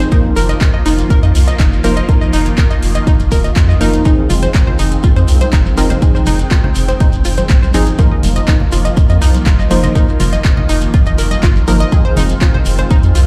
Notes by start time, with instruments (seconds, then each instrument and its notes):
0.00 closed hi-hat, shekere
0.12 supersaw synth D#3 F3 A#3 F4, synth pluck F3 A#3 D#4 A#4, synth arpeggio sound D#4, kick, closed hi-hat, shekere
0.36 analog synth bass F1, synth arpeggio sound A#4, open hi-hat, shekere
0.49 synth arpeggio sound D#5, closed hi-hat, shekere
0.61 kick, clap, closed hi-hat, shekere
0.74 synth arpeggio sound D#5
0.86 analog synth bass F1, synth arpeggio sound D#4, open hi-hat, shekere
0.99 closed hi-hat, shekere
1.10 synth arpeggio sound A#4, kick, closed hi-hat, shekere
1.23 analog synth bass F2, synth arpeggio sound D#5, closed hi-hat, shekere
1.35 analog synth bass C2, open hi-hat, shekere
1.48 synth arpeggio sound D#5, closed hi-hat, shekere
1.59 analog synth bass F1, synth arpeggio sound D#4, kick, clap, closed hi-hat, shekere
1.72 shekere
1.84 analog synth bass F1, synth pluck F3 A#3 D#4 C5, synth arpeggio sound A#4, open hi-hat, shekere
1.96 synth arpeggio sound D#5, closed hi-hat, shekere
2.09 synth pluck F3 A#3 D#4 A#4, kick, closed hi-hat, shekere
2.21 synth arpeggio sound D#5, shekere
2.33 analog synth bass F1, synth arpeggio sound D#4, open hi-hat, shekere
2.46 closed hi-hat, shekere
2.57 synth arpeggio sound A#4, kick, clap, closed hi-hat, shekere
2.71 synth arpeggio sound D#5, closed hi-hat, shekere
2.82 analog synth bass F1, open hi-hat, shekere
2.95 synth arpeggio sound D#5, closed hi-hat, shekere
3.07 synth arpeggio sound D#4, kick, closed hi-hat, swell, shekere
3.20 analog synth bass F1, closed hi-hat, shekere
3.32 analog synth bass D#1, synth arpeggio sound A#4, kick, open hi-hat, shekere
3.44 synth arpeggio sound D#5, closed hi-hat, shekere
3.56 analog synth bass F2, kick, clap, closed hi-hat, shekere
3.69 synth arpeggio sound D#5, shekere
3.81 analog synth bass F1, synth pluck F3 A#3 D#4 A#4, synth arpeggio sound D#4, open hi-hat, shekere
3.93 closed hi-hat, shekere
4.05 synth pluck F3 C4 D#4 G#4, supersaw synth G#3 C4, synth arpeggio sound D#4, kick, closed hi-hat, shekere
4.30 analog synth bass F1, synth arpeggio sound F4, open hi-hat, high conga, low conga, shekere
4.43 synth arpeggio sound C5, closed hi-hat, shekere
4.54 kick, clap, closed hi-hat, shekere
4.67 synth arpeggio sound C5, low conga
4.79 analog synth bass F1, synth arpeggio sound D#4, open hi-hat, shekere
4.92 closed hi-hat, shekere
5.03 synth arpeggio sound F4, kick, closed hi-hat, shekere
5.16 analog synth bass F2, synth arpeggio sound C5, closed hi-hat, shekere
5.28 analog synth bass C2, open hi-hat, shekere
5.41 synth arpeggio sound C5, closed hi-hat, high conga, shekere
5.53 analog synth bass F1, synth arpeggio sound D#4, kick, clap, closed hi-hat, shekere
5.65 high conga, shekere
5.77 analog synth bass F1, synth pluck F3 C4 D#4 A#4, synth arpeggio sound F4, open hi-hat, shekere
5.90 synth arpeggio sound C5, closed hi-hat, low conga, shekere
6.02 synth pluck F3 C4 D#4 G#4, supersaw synth G5, kick, closed hi-hat, shekere
6.15 synth arpeggio sound C5, shekere
6.26 analog synth bass F1, synth arpeggio sound D#4, open hi-hat, high conga, low conga, shekere
6.39 closed hi-hat, shekere
6.51 synth arpeggio sound F4, kick, clap, closed hi-hat, shekere
6.64 synth arpeggio sound C5, low conga
6.75 analog synth bass F1, open hi-hat, shekere
6.88 synth arpeggio sound C5, closed hi-hat, shekere
7.00 synth arpeggio sound D#4, kick, closed hi-hat, shekere
7.12 analog synth bass F1, closed hi-hat, shekere
7.25 analog synth bass F1, synth arpeggio sound F4, open hi-hat, shekere
7.37 synth arpeggio sound C5, closed hi-hat, high conga, shekere
7.49 analog synth bass C2, kick, clap, closed hi-hat, shekere
7.62 synth arpeggio sound C5, high conga, shekere
7.74 analog synth bass G#1, synth pluck F3 C4 D#4 G#4, synth arpeggio sound D#4, open hi-hat, shekere
7.87 closed hi-hat, shekere
7.99 supersaw synth D#3 F3 A#3 F4, synth pluck F3 A#3 D#4 A#4, synth arpeggio sound F4, kick, closed hi-hat, shekere
8.11 synth arpeggio sound D#5
8.23 analog synth bass F1, open hi-hat, high conga, low conga, shekere
8.36 synth arpeggio sound D#5, closed hi-hat, shekere
8.47 synth arpeggio sound D#4, kick, clap, closed hi-hat, shekere
8.60 low conga
8.72 analog synth bass F1, synth arpeggio sound F4, open hi-hat, shekere
8.85 synth arpeggio sound D#5, closed hi-hat, shekere
8.96 kick, closed hi-hat, shekere
9.09 analog synth bass F2, synth arpeggio sound D#5, closed hi-hat, shekere
9.22 analog synth bass C2, synth arpeggio sound D#4, open hi-hat, shekere
9.34 closed hi-hat, high conga, shekere
9.46 analog synth bass F1, synth arpeggio sound F4, kick, clap, closed hi-hat, shekere
9.59 synth arpeggio sound D#5, high conga, shekere
9.71 analog synth bass F1, synth pluck F3 A#3 D#4 C5, open hi-hat, shekere
9.83 synth arpeggio sound D#5, closed hi-hat, low conga, shekere
9.95 synth pluck F3 A#3 D#4 A#4, synth arpeggio sound D#4, kick, closed hi-hat, shekere
10.09 shekere
10.20 analog synth bass F1, synth arpeggio sound F4, open hi-hat, high conga, low conga, shekere
10.33 synth arpeggio sound D#5, closed hi-hat, shekere
10.45 kick, clap, closed hi-hat, shekere
10.57 synth arpeggio sound D#5, low conga
10.69 analog synth bass F1, synth arpeggio sound D#4, open hi-hat, shekere
10.81 closed hi-hat, shekere
10.94 synth arpeggio sound F4, kick, closed hi-hat, shekere
11.06 analog synth bass F1, synth arpeggio sound D#5, closed hi-hat, shekere
11.18 analog synth bass F1, synth arpeggio sound A#4, open hi-hat, shekere
11.31 synth arpeggio sound D#5, closed hi-hat, high conga, shekere
11.43 analog synth bass G1, synth arpeggio sound F4, kick, clap, closed hi-hat, shekere
11.56 high conga, shekere
11.68 analog synth bass G1, synth pluck F3 A#3 D#4 A#4, synth arpeggio sound A#4, open hi-hat, shekere
11.80 synth arpeggio sound D#5, closed hi-hat, shekere
11.92 synth pluck F3 C4 D#4 G#4, supersaw synth G#3 C4, kick, closed hi-hat, shekere
12.05 synth arpeggio sound C5
12.16 analog synth bass F1, synth arpeggio sound D#4, open hi-hat, high conga, low conga, shekere
12.30 closed hi-hat, shekere
12.41 synth arpeggio sound F4, kick, clap, closed hi-hat, shekere
12.54 synth arpeggio sound C5, low conga
12.65 analog synth bass F1, open hi-hat, shekere
12.79 synth arpeggio sound C5, closed hi-hat, shekere
12.90 synth arpeggio sound D#4, kick, closed hi-hat, shekere
13.03 analog synth bass F2, closed hi-hat, shekere
13.15 analog synth bass C2, synth arpeggio sound F4, open hi-hat, shekere